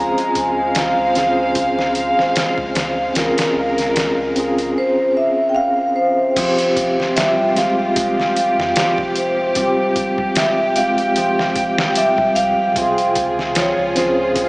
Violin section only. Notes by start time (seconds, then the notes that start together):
Already playing: G#3 C5 F5
3.15 A#4
6.37 F4 G4
9.55 G5
12.76 F4 G#4